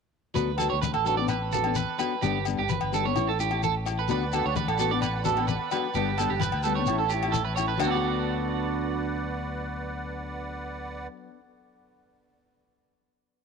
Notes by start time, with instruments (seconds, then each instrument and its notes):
0.34 fingered electric bass D2, steel-string acoustic guitar F#3 B3 D4 A4, clean electric guitar B4, muted conga, shekere
0.58 steel-string acoustic guitar F#3 B3 D4 A4, clean electric guitar A4, muted conga, low agogo, shekere
0.70 fingered electric bass D2, clean electric guitar C#5
0.82 clean electric guitar B4, high conga, shekere
0.94 fingered electric bass A1, clean electric guitar A4, low agogo
1.04 steel-string acoustic guitar F#3 B3 D4 A4, clean electric guitar A4, shekere
1.17 steel-string acoustic guitar B3 D4 A4, clean electric guitar D5
1.28 clean electric guitar B4, muted conga, low agogo, shekere
1.52 steel-string acoustic guitar F#3 B3 D4 A4, clean electric guitar A4, high conga, shekere
1.64 steel-string acoustic guitar B3 D4 A4, low agogo
1.75 clean electric guitar B4, high conga, shekere
1.98 steel-string acoustic guitar F#3 B3 D4 A4, clean electric guitar B4, muted conga, low agogo, shekere
2.22 fingered electric bass G1, steel-string acoustic guitar G3 B3 D4 A4, clean electric guitar G4, muted conga, shekere
2.45 steel-string acoustic guitar G3 B3 D4 A4, muted conga, low agogo, shekere
2.59 fingered electric bass G1, clean electric guitar G4
2.69 clean electric guitar B4, high conga, shekere
2.81 fingered electric bass G1, low agogo
2.92 steel-string acoustic guitar G3 B3 D4 A4, clean electric guitar A4, shekere
3.04 steel-string acoustic guitar B3 D4 A4, clean electric guitar C#5
3.15 fingered electric bass A1, steel-string acoustic guitar C#4 E4 A4, muted conga, low agogo, shekere
3.29 clean electric guitar A4
3.39 steel-string acoustic guitar C#4 E4 A4, clean electric guitar G4, shekere
3.51 steel-string acoustic guitar E4 A4, low agogo
3.63 clean electric guitar A4, high conga, shekere
3.85 steel-string acoustic guitar E4 A4, muted steel-string acoustic guitar stroke, muted clean electric guitar stroke, muted conga, low agogo, shekere
3.99 clean electric guitar B4
4.08 fingered electric bass D2, steel-string acoustic guitar F#3 B3 D4 A4, clean electric guitar B4, accordion D5 F#5 B5, muted conga, shekere
4.32 steel-string acoustic guitar F#3 B3 D4 A4, clean electric guitar A4, muted conga, low agogo, shekere
4.46 fingered electric bass D2, clean electric guitar C#5
4.56 clean electric guitar B4, high conga, shekere
4.68 fingered electric bass A1, clean electric guitar A4, low agogo
4.78 steel-string acoustic guitar F#3 B3 D4 A4, clean electric guitar A4, shekere
4.90 steel-string acoustic guitar B3 D4 A4, clean electric guitar D5
5.02 clean electric guitar B4, muted conga, low agogo, shekere
5.24 steel-string acoustic guitar F#3 B3 D4 A4, clean electric guitar A4, high conga, shekere
5.35 steel-string acoustic guitar B3 D4 A4, low agogo
5.48 clean electric guitar B4, high conga, shekere
5.71 steel-string acoustic guitar F#3 B3 D4 A4, clean electric guitar B4, muted conga, low agogo, shekere
5.94 fingered electric bass G1, steel-string acoustic guitar G3 B3 D4 A4, clean electric guitar G4, accordion B4 G5 A5, muted conga, shekere
6.18 steel-string acoustic guitar G3 B3 D4 A4, clean electric guitar A4, muted conga, low agogo, shekere
6.30 fingered electric bass G1, clean electric guitar G4
6.40 clean electric guitar B4, high conga, shekere
6.52 fingered electric bass D2, low agogo
6.63 steel-string acoustic guitar G3 B3 D4, clean electric guitar A4, shekere
6.68 steel-string acoustic guitar A4
6.75 steel-string acoustic guitar D4 A4, clean electric guitar C#5
6.80 steel-string acoustic guitar B3
6.86 fingered electric bass A1, steel-string acoustic guitar C#4 E4, accordion C#5, muted conga, low agogo, shekere
6.91 steel-string acoustic guitar A4, accordion E5
6.99 clean electric guitar A4
7.10 steel-string acoustic guitar C#4 E4, clean electric guitar G4, shekere
7.15 steel-string acoustic guitar A4
7.23 steel-string acoustic guitar A4, low agogo
7.28 steel-string acoustic guitar E4
7.32 clean electric guitar A4, high conga, shekere
7.45 clean electric guitar B4
7.56 steel-string acoustic guitar C#4 E4 A4, clean electric guitar C#5, muted conga, low agogo, shekere
7.68 clean electric guitar B4
7.77 fingered electric bass D2, steel-string acoustic guitar F#3, clean electric guitar D4, muted conga, low agogo, shekere
7.82 steel-string acoustic guitar B3, clean electric guitar F#4, accordion B4 D5 F#5
7.87 steel-string acoustic guitar D4, clean electric guitar A4
7.91 clean electric guitar D5
7.95 steel-string acoustic guitar A4